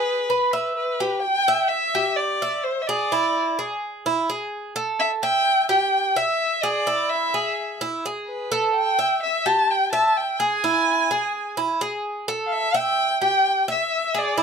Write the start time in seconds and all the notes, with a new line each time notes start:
Already playing: G#4 B4
0.30 B4
0.53 E5
0.77 B4
1.00 G4
1.22 G5
1.48 E5
1.68 E5
1.95 G4
2.16 D5
2.42 E5
2.64 C5
2.82 E5
2.88 G#4 D5
3.12 E4
3.59 G#4
4.06 E4
4.30 G#4
4.76 A4
5.00 E5
5.23 E5 G5
5.69 G4 G5
6.16 E5
6.63 G#4 D5
6.87 E4
7.10 E5
7.34 G#4
7.81 E4
8.06 G#4
8.27 B4
8.52 A4
8.75 G5
8.99 E5
9.23 E5
9.46 G4 A5
9.71 G5
9.93 E5 A5
10.17 G5
10.40 G#4 G#5
10.64 E4
11.11 G#4
11.57 E4
11.81 G#4
12.28 A4
12.46 F5
12.53 E5
12.74 E5 G5
13.22 G4 G5
13.68 E5
14.15 G#4 D5
14.37 E4